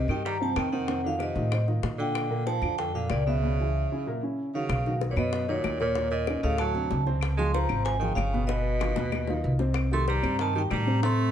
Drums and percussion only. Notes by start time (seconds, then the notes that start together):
0.09 claves
0.26 high bongo
0.56 high bongo, low bongo, claves
0.88 high bongo
1.20 high bongo, claves
1.37 high bongo
1.52 high bongo, claves
1.68 high bongo
1.83 high bongo, low bongo
2.00 high bongo
2.15 high bongo, claves
2.47 high bongo
2.63 claves
2.79 high bongo
3.10 high bongo, low bongo, claves
4.70 high bongo, claves
4.86 high bongo
5.01 high bongo
5.17 claves
5.33 high bongo
5.49 high bongo
5.64 high bongo, low bongo, claves
5.80 high bongo
5.95 high bongo
6.11 high bongo
6.27 high bongo, claves
6.58 high bongo, claves
6.75 high bongo
6.91 high bongo, low bongo
7.06 high bongo
7.21 high bongo, claves
7.39 high bongo
7.55 high bongo
7.69 claves
7.86 high bongo
8.02 high bongo
8.17 high bongo, low bongo, claves
8.34 high bongo
8.49 high bongo
8.80 high bongo, claves
8.96 low bongo
9.12 low bongo, claves
9.27 low bongo
9.59 low bongo
9.74 high bongo, claves
9.91 high bongo
10.08 high bongo
10.23 claves
10.39 high bongo
10.55 high bongo
10.70 high bongo, low bongo, claves
10.88 high bongo
11.03 high bongo
11.19 high bongo